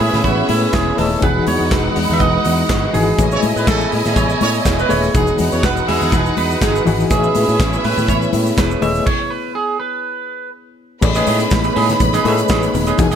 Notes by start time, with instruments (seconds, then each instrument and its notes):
Already playing: reed electric piano A3 G#4 B4 C#5 E5, glass harmonica B3 E4 G#4 C#5, string section C#4 B4 E5
0.00 fingered electric bass A2, clean electric guitar G#4, open hi-hat, high conga
0.13 fingered electric bass A2, snare, low conga
0.24 fingered electric bass A1, clean electric guitar F#4, kick, closed hi-hat, high conga
0.49 fingered electric bass A2, clean electric guitar E4, open hi-hat, muted conga, high conga
0.73 fingered electric bass E1, clean electric guitar G#4, kick, snare, clap, closed hi-hat, muted conga, high conga
0.97 fingered electric bass D#1, reed electric piano A3 G#4 B4 C#5 D#5, clean electric guitar A4, open hi-hat, muted conga, low conga
1.21 fingered electric bass E1, reed electric piano E3 D#4 F#4 G#4, glass harmonica G#3 D#4 F#4 D#5, string section D#4 B4 F#5, clean electric guitar B4, kick, closed hi-hat, muted conga, low conga
1.47 fingered electric bass E2, clean electric guitar C#5, open hi-hat, muted conga, high conga
1.61 fingered electric bass E2
1.71 fingered electric bass E1, kick, snare, clap, closed hi-hat, muted conga, high conga
1.96 fingered electric bass E2, open hi-hat, high conga
2.10 fingered electric bass E2, clean electric guitar E5, low conga
2.20 fingered electric bass E1, clean electric guitar D#5, kick, closed hi-hat, high conga
2.45 fingered electric bass E2, open hi-hat, high conga
2.69 fingered electric bass G1, kick, snare, clap, closed hi-hat, high conga
2.93 fingered electric bass G#1, reed electric piano E3 D#4 F#4 G#4, clean electric guitar G#4, open hi-hat, muted conga, low conga
3.18 fingered electric bass A1, reed electric piano A3 G#4 B4 C#5 D#5, glass harmonica B3 G#4 C#5 D#5, string section E4 D#5 G#5, kick, closed hi-hat, muted conga, shaker
3.32 horn section C#4 C#5, shaker
3.42 fingered electric bass A2, open hi-hat, muted conga, high conga, shaker
3.56 fingered electric bass A2, horn section B3 B4, shaker
3.67 fingered electric bass A1, horn section A3 A4, kick, snare, clap, closed hi-hat, muted conga, high conga, shaker
3.81 shaker
3.92 fingered electric bass A2, open hi-hat, high conga
4.05 fingered electric bass A2, snare, low conga, shaker
4.16 fingered electric bass A1, clean electric guitar C#5, kick, closed hi-hat, muted conga, high conga, shaker
4.30 shaker
4.41 fingered electric bass A2, horn section C#4 C#5, open hi-hat, muted conga, high conga
4.54 shaker
4.65 fingered electric bass E1, kick, snare, clap, closed hi-hat, muted conga, high conga, shaker
4.79 horn section B3 B4, shaker
4.89 fingered electric bass D#1, reed electric piano A3 G#4 B4 C#5 E5, clean electric guitar C#5, open hi-hat, low conga, shaker
5.03 shaker
5.14 fingered electric bass E1, reed electric piano E3 D#4 F#4 G#4, horn section G#3 G#4, string section D#4 B4 F#5, glass harmonica D#4 F#4 D#5, kick, closed hi-hat, muted conga, shaker
5.27 shaker
5.38 fingered electric bass E2, open hi-hat, muted conga, high conga, shaker
5.52 fingered electric bass E2, horn section C#4 C#5, shaker
5.63 fingered electric bass E1, horn section B3 B4, clean electric guitar F#5, kick, snare, clap, closed hi-hat, high conga, shaker
5.77 shaker
5.88 fingered electric bass E2, horn section G#3 G#4, clean electric guitar E5, open hi-hat, high conga
6.01 fingered electric bass E2, low conga, shaker
6.12 fingered electric bass E1, clean electric guitar B4, kick, closed hi-hat, muted conga, high conga, shaker
6.26 shaker
6.37 fingered electric bass E2, clean electric guitar B4, open hi-hat, muted conga, high conga
6.51 shaker
6.61 fingered electric bass G1, horn section G#3 G#4, kick, snare, clap, closed hi-hat, high conga, shaker
6.76 shaker
6.86 fingered electric bass G#1, reed electric piano E3 D#4 F#4 G#4, open hi-hat, muted conga, low conga, shaker
7.00 shaker
7.10 fingered electric bass A1, reed electric piano A3 G#4 B4 C#5 E5, glass harmonica B3 E4 C#5, string section C#4 B4 E5, clean electric guitar G#4, kick, closed hi-hat, muted conga, shaker
7.23 shaker
7.35 fingered electric bass A2, open hi-hat, muted conga, high conga, shaker
7.49 fingered electric bass A2, shaker
7.60 fingered electric bass A1, kick, snare, clap, closed hi-hat, high conga, shaker
7.73 shaker
7.84 fingered electric bass A2, clean electric guitar B4, open hi-hat, muted conga, high conga
7.97 fingered electric bass A2, low conga, shaker
8.08 fingered electric bass A1, clean electric guitar C#5, kick, closed hi-hat, high conga, shaker
8.22 shaker
8.33 fingered electric bass A2, open hi-hat, muted conga, high conga
8.46 shaker
8.57 fingered electric bass E1, clean electric guitar B4, kick, snare, clap, closed hi-hat, high conga, shaker
8.71 shaker
8.81 fingered electric bass D#1, reed electric piano A3 G#4 B4 C#5 D#5, clean electric guitar E5, open hi-hat, muted conga, low conga, shaker
8.95 shaker
9.06 clean electric guitar C#5, kick, crash
9.30 clean electric guitar B4
9.55 clean electric guitar G#4
9.80 clean electric guitar B4
11.02 fingered electric bass A1, reed electric piano A3 G#4 B4 C#5 D5, glass harmonica B3 D#4 G#4 C#5, string section B4 B5, muted clean electric guitar stroke, kick, crash, muted conga, low conga, shaker
11.09 reed electric piano D#5
11.15 clean electric guitar C#4 G#4 B4 D#5, closed hi-hat, shaker
11.26 fingered electric bass A2, clean electric guitar C#4 G#4 B4 D#5, open hi-hat, muted conga, high conga, shaker
11.39 muted clean electric guitar stroke, closed hi-hat, shaker
11.51 fingered electric bass A1, kick, snare, clap, muted conga, high conga, shaker
11.63 muted clean electric guitar stroke, closed hi-hat, shaker
11.76 fingered electric bass A2, clean electric guitar C#4 G#4 B4 D#5, open hi-hat, muted conga, high conga
11.89 muted clean electric guitar stroke, snare, closed hi-hat, low conga, shaker
12.00 fingered electric bass A1, muted clean electric guitar stroke, kick, closed hi-hat, muted conga, high conga, shaker
12.13 clean electric guitar C#4 G#4 B4 D#5, closed hi-hat, shaker
12.24 fingered electric bass A2, reed electric piano A3 G#4 B4 C#5 D#5, clean electric guitar C#4 G#4 B4 E5, open hi-hat, muted conga, high conga
12.38 muted clean electric guitar stroke, closed hi-hat, shaker
12.48 fingered electric bass A1, clean electric guitar C#4 G#4 B4 D#5, kick, snare, clap, high conga, shaker
12.62 muted clean electric guitar stroke, closed hi-hat, shaker
12.74 fingered electric bass D#1, muted clean electric guitar stroke, open hi-hat, muted conga, low conga, shaker
12.87 clean electric guitar C#4 G#4 B4 D#5, closed hi-hat, shaker
12.97 fingered electric bass E1, reed electric piano E3 D#4 F#4 G#4, glass harmonica G#3 D#4 F#4 D#5, string section G#4 G#5, muted clean electric guitar stroke, kick, closed hi-hat, low conga, shaker
13.11 clean electric guitar F#4 G#4 D#5, closed hi-hat, shaker